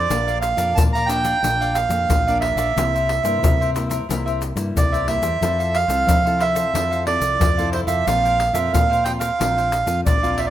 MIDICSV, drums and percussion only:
0, 0, Header, 1, 3, 480
1, 0, Start_track
1, 0, Tempo, 663717
1, 77, Time_signature, 4, 2, 24, 8
1, 7594, End_track
2, 0, Start_track
2, 0, Title_t, "Pandeiro"
2, 76, Note_on_c, 9, 54, 81
2, 148, Note_off_c, 9, 54, 0
2, 203, Note_on_c, 9, 54, 33
2, 276, Note_off_c, 9, 54, 0
2, 308, Note_on_c, 9, 54, 63
2, 380, Note_off_c, 9, 54, 0
2, 420, Note_on_c, 9, 54, 59
2, 492, Note_off_c, 9, 54, 0
2, 562, Note_on_c, 9, 54, 80
2, 634, Note_off_c, 9, 54, 0
2, 689, Note_on_c, 9, 54, 32
2, 762, Note_off_c, 9, 54, 0
2, 791, Note_on_c, 9, 54, 64
2, 864, Note_off_c, 9, 54, 0
2, 901, Note_on_c, 9, 54, 57
2, 973, Note_off_c, 9, 54, 0
2, 1042, Note_on_c, 9, 54, 75
2, 1114, Note_off_c, 9, 54, 0
2, 1170, Note_on_c, 9, 54, 31
2, 1243, Note_off_c, 9, 54, 0
2, 1268, Note_on_c, 9, 54, 60
2, 1340, Note_off_c, 9, 54, 0
2, 1377, Note_on_c, 9, 54, 55
2, 1449, Note_off_c, 9, 54, 0
2, 1517, Note_on_c, 9, 54, 77
2, 1590, Note_off_c, 9, 54, 0
2, 1650, Note_on_c, 9, 54, 35
2, 1722, Note_off_c, 9, 54, 0
2, 1750, Note_on_c, 9, 54, 64
2, 1822, Note_off_c, 9, 54, 0
2, 1865, Note_on_c, 9, 54, 60
2, 1937, Note_off_c, 9, 54, 0
2, 2007, Note_on_c, 9, 54, 86
2, 2079, Note_off_c, 9, 54, 0
2, 2138, Note_on_c, 9, 54, 31
2, 2210, Note_off_c, 9, 54, 0
2, 2236, Note_on_c, 9, 54, 64
2, 2309, Note_off_c, 9, 54, 0
2, 2349, Note_on_c, 9, 54, 58
2, 2421, Note_off_c, 9, 54, 0
2, 2486, Note_on_c, 9, 54, 82
2, 2559, Note_off_c, 9, 54, 0
2, 2617, Note_on_c, 9, 54, 31
2, 2690, Note_off_c, 9, 54, 0
2, 2718, Note_on_c, 9, 54, 62
2, 2790, Note_off_c, 9, 54, 0
2, 2827, Note_on_c, 9, 54, 58
2, 2899, Note_off_c, 9, 54, 0
2, 2968, Note_on_c, 9, 54, 80
2, 3041, Note_off_c, 9, 54, 0
2, 3093, Note_on_c, 9, 54, 32
2, 3165, Note_off_c, 9, 54, 0
2, 3195, Note_on_c, 9, 54, 55
2, 3267, Note_off_c, 9, 54, 0
2, 3303, Note_on_c, 9, 54, 55
2, 3376, Note_off_c, 9, 54, 0
2, 3448, Note_on_c, 9, 54, 72
2, 3520, Note_off_c, 9, 54, 0
2, 3572, Note_on_c, 9, 54, 33
2, 3645, Note_off_c, 9, 54, 0
2, 3673, Note_on_c, 9, 54, 62
2, 3746, Note_off_c, 9, 54, 0
2, 3780, Note_on_c, 9, 54, 54
2, 3852, Note_off_c, 9, 54, 0
2, 3924, Note_on_c, 9, 54, 82
2, 3996, Note_off_c, 9, 54, 0
2, 4051, Note_on_c, 9, 54, 34
2, 4123, Note_off_c, 9, 54, 0
2, 4156, Note_on_c, 9, 54, 61
2, 4228, Note_off_c, 9, 54, 0
2, 4265, Note_on_c, 9, 54, 55
2, 4337, Note_off_c, 9, 54, 0
2, 4401, Note_on_c, 9, 54, 79
2, 4473, Note_off_c, 9, 54, 0
2, 4533, Note_on_c, 9, 54, 30
2, 4605, Note_off_c, 9, 54, 0
2, 4632, Note_on_c, 9, 54, 61
2, 4704, Note_off_c, 9, 54, 0
2, 4745, Note_on_c, 9, 54, 59
2, 4817, Note_off_c, 9, 54, 0
2, 4882, Note_on_c, 9, 54, 80
2, 4954, Note_off_c, 9, 54, 0
2, 5009, Note_on_c, 9, 54, 33
2, 5082, Note_off_c, 9, 54, 0
2, 5112, Note_on_c, 9, 54, 63
2, 5184, Note_off_c, 9, 54, 0
2, 5218, Note_on_c, 9, 54, 55
2, 5291, Note_off_c, 9, 54, 0
2, 5359, Note_on_c, 9, 54, 81
2, 5431, Note_off_c, 9, 54, 0
2, 5487, Note_on_c, 9, 54, 35
2, 5559, Note_off_c, 9, 54, 0
2, 5590, Note_on_c, 9, 54, 67
2, 5662, Note_off_c, 9, 54, 0
2, 5698, Note_on_c, 9, 54, 57
2, 5771, Note_off_c, 9, 54, 0
2, 5840, Note_on_c, 9, 54, 79
2, 5912, Note_off_c, 9, 54, 0
2, 5970, Note_on_c, 9, 54, 33
2, 6042, Note_off_c, 9, 54, 0
2, 6074, Note_on_c, 9, 54, 67
2, 6147, Note_off_c, 9, 54, 0
2, 6182, Note_on_c, 9, 54, 61
2, 6255, Note_off_c, 9, 54, 0
2, 6324, Note_on_c, 9, 54, 80
2, 6396, Note_off_c, 9, 54, 0
2, 6457, Note_on_c, 9, 54, 30
2, 6530, Note_off_c, 9, 54, 0
2, 6550, Note_on_c, 9, 54, 63
2, 6622, Note_off_c, 9, 54, 0
2, 6661, Note_on_c, 9, 54, 61
2, 6733, Note_off_c, 9, 54, 0
2, 6804, Note_on_c, 9, 54, 82
2, 6877, Note_off_c, 9, 54, 0
2, 6930, Note_on_c, 9, 54, 30
2, 7003, Note_off_c, 9, 54, 0
2, 7031, Note_on_c, 9, 54, 63
2, 7104, Note_off_c, 9, 54, 0
2, 7140, Note_on_c, 9, 54, 55
2, 7212, Note_off_c, 9, 54, 0
2, 7279, Note_on_c, 9, 54, 73
2, 7351, Note_off_c, 9, 54, 0
2, 7406, Note_on_c, 9, 54, 36
2, 7478, Note_off_c, 9, 54, 0
2, 7505, Note_on_c, 9, 54, 62
2, 7577, Note_off_c, 9, 54, 0
2, 7594, End_track
3, 0, Start_track
3, 0, Title_t, "Drums"
3, 76, Note_on_c, 9, 82, 80
3, 76, Note_on_c, 9, 87, 56
3, 148, Note_off_c, 9, 82, 0
3, 148, Note_off_c, 9, 87, 0
3, 203, Note_on_c, 9, 82, 33
3, 276, Note_off_c, 9, 82, 0
3, 308, Note_on_c, 9, 82, 70
3, 380, Note_off_c, 9, 82, 0
3, 420, Note_on_c, 9, 82, 75
3, 492, Note_off_c, 9, 82, 0
3, 562, Note_on_c, 9, 82, 86
3, 562, Note_on_c, 9, 87, 107
3, 634, Note_off_c, 9, 82, 0
3, 634, Note_off_c, 9, 87, 0
3, 689, Note_on_c, 9, 82, 29
3, 762, Note_off_c, 9, 82, 0
3, 791, Note_on_c, 9, 82, 68
3, 864, Note_off_c, 9, 82, 0
3, 901, Note_on_c, 9, 82, 78
3, 973, Note_off_c, 9, 82, 0
3, 1042, Note_on_c, 9, 82, 76
3, 1042, Note_on_c, 9, 87, 57
3, 1114, Note_off_c, 9, 82, 0
3, 1114, Note_off_c, 9, 87, 0
3, 1170, Note_on_c, 9, 82, 33
3, 1243, Note_off_c, 9, 82, 0
3, 1268, Note_on_c, 9, 82, 60
3, 1340, Note_off_c, 9, 82, 0
3, 1377, Note_on_c, 9, 82, 78
3, 1449, Note_off_c, 9, 82, 0
3, 1517, Note_on_c, 9, 82, 79
3, 1517, Note_on_c, 9, 87, 94
3, 1590, Note_off_c, 9, 82, 0
3, 1590, Note_off_c, 9, 87, 0
3, 1650, Note_on_c, 9, 82, 36
3, 1722, Note_off_c, 9, 82, 0
3, 1865, Note_on_c, 9, 82, 76
3, 1937, Note_off_c, 9, 82, 0
3, 2007, Note_on_c, 9, 82, 75
3, 2007, Note_on_c, 9, 87, 62
3, 2079, Note_off_c, 9, 82, 0
3, 2079, Note_off_c, 9, 87, 0
3, 2138, Note_on_c, 9, 82, 33
3, 2210, Note_off_c, 9, 82, 0
3, 2349, Note_on_c, 9, 82, 78
3, 2421, Note_off_c, 9, 82, 0
3, 2486, Note_on_c, 9, 82, 80
3, 2486, Note_on_c, 9, 87, 104
3, 2559, Note_off_c, 9, 82, 0
3, 2559, Note_off_c, 9, 87, 0
3, 2617, Note_on_c, 9, 82, 32
3, 2690, Note_off_c, 9, 82, 0
3, 2718, Note_on_c, 9, 82, 64
3, 2790, Note_off_c, 9, 82, 0
3, 2827, Note_on_c, 9, 82, 81
3, 2899, Note_off_c, 9, 82, 0
3, 2968, Note_on_c, 9, 82, 80
3, 2968, Note_on_c, 9, 87, 53
3, 3041, Note_off_c, 9, 82, 0
3, 3041, Note_off_c, 9, 87, 0
3, 3093, Note_on_c, 9, 82, 32
3, 3165, Note_off_c, 9, 82, 0
3, 3195, Note_on_c, 9, 82, 62
3, 3267, Note_off_c, 9, 82, 0
3, 3303, Note_on_c, 9, 82, 76
3, 3376, Note_off_c, 9, 82, 0
3, 3448, Note_on_c, 9, 82, 73
3, 3448, Note_on_c, 9, 87, 93
3, 3520, Note_off_c, 9, 82, 0
3, 3520, Note_off_c, 9, 87, 0
3, 3572, Note_on_c, 9, 82, 33
3, 3645, Note_off_c, 9, 82, 0
3, 3780, Note_on_c, 9, 82, 80
3, 3852, Note_off_c, 9, 82, 0
3, 3924, Note_on_c, 9, 82, 80
3, 3924, Note_on_c, 9, 87, 60
3, 3996, Note_off_c, 9, 82, 0
3, 3996, Note_off_c, 9, 87, 0
3, 4051, Note_on_c, 9, 82, 31
3, 4123, Note_off_c, 9, 82, 0
3, 4265, Note_on_c, 9, 82, 81
3, 4337, Note_off_c, 9, 82, 0
3, 4401, Note_on_c, 9, 82, 82
3, 4401, Note_on_c, 9, 87, 100
3, 4473, Note_off_c, 9, 82, 0
3, 4473, Note_off_c, 9, 87, 0
3, 4533, Note_on_c, 9, 82, 31
3, 4605, Note_off_c, 9, 82, 0
3, 4745, Note_on_c, 9, 82, 79
3, 4817, Note_off_c, 9, 82, 0
3, 4882, Note_on_c, 9, 82, 78
3, 4882, Note_on_c, 9, 87, 56
3, 4954, Note_off_c, 9, 82, 0
3, 4954, Note_off_c, 9, 87, 0
3, 5009, Note_on_c, 9, 82, 30
3, 5082, Note_off_c, 9, 82, 0
3, 5218, Note_on_c, 9, 82, 81
3, 5291, Note_off_c, 9, 82, 0
3, 5359, Note_on_c, 9, 82, 77
3, 5359, Note_on_c, 9, 87, 94
3, 5431, Note_off_c, 9, 82, 0
3, 5431, Note_off_c, 9, 87, 0
3, 5487, Note_on_c, 9, 82, 33
3, 5559, Note_off_c, 9, 82, 0
3, 5698, Note_on_c, 9, 82, 74
3, 5771, Note_off_c, 9, 82, 0
3, 5840, Note_on_c, 9, 82, 75
3, 5840, Note_on_c, 9, 87, 56
3, 5912, Note_off_c, 9, 82, 0
3, 5912, Note_off_c, 9, 87, 0
3, 5970, Note_on_c, 9, 82, 34
3, 6042, Note_off_c, 9, 82, 0
3, 6182, Note_on_c, 9, 82, 77
3, 6255, Note_off_c, 9, 82, 0
3, 6324, Note_on_c, 9, 82, 81
3, 6324, Note_on_c, 9, 87, 96
3, 6396, Note_off_c, 9, 82, 0
3, 6396, Note_off_c, 9, 87, 0
3, 6457, Note_on_c, 9, 82, 31
3, 6530, Note_off_c, 9, 82, 0
3, 6550, Note_on_c, 9, 82, 61
3, 6622, Note_off_c, 9, 82, 0
3, 6661, Note_on_c, 9, 82, 80
3, 6733, Note_off_c, 9, 82, 0
3, 6804, Note_on_c, 9, 82, 77
3, 6804, Note_on_c, 9, 87, 56
3, 6877, Note_off_c, 9, 82, 0
3, 6877, Note_off_c, 9, 87, 0
3, 6930, Note_on_c, 9, 82, 32
3, 7003, Note_off_c, 9, 82, 0
3, 7031, Note_on_c, 9, 82, 65
3, 7104, Note_off_c, 9, 82, 0
3, 7140, Note_on_c, 9, 82, 78
3, 7212, Note_off_c, 9, 82, 0
3, 7279, Note_on_c, 9, 82, 76
3, 7279, Note_on_c, 9, 87, 96
3, 7351, Note_off_c, 9, 82, 0
3, 7351, Note_off_c, 9, 87, 0
3, 7406, Note_on_c, 9, 82, 31
3, 7478, Note_off_c, 9, 82, 0
3, 7594, End_track
0, 0, End_of_file